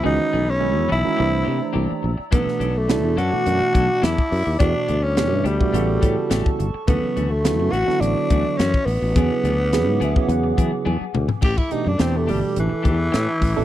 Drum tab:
CC |----------------|----------------|----------------|----------------|
HH |----------------|x-x-x-x-x-x-x-o-|x-x-x-x-x-x-x-x-|x-x-x-x-x-x-x-o-|
SD |----------------|-o--o-------o---|----o-------o---|----o--o----o---|
T1 |----------------|----------------|----------------|----------------|
T2 |----------------|----------------|----------------|----------------|
FT |----------------|----------------|----------------|----------------|
BD |----------------|o---------o--o--|o------o--o--o--|o---------o--o--|

CC |----------------|x---------------|
HH |x-x-x-x-x-x-----|--x-x-o-x-x-x-o-|
SD |----o-----------|----o-------o---|
T1 |------------o---|----------------|
T2 |--------------o-|----------------|
FT |---------------o|----------------|
BD |o------o--o-----|oo--------o---o-|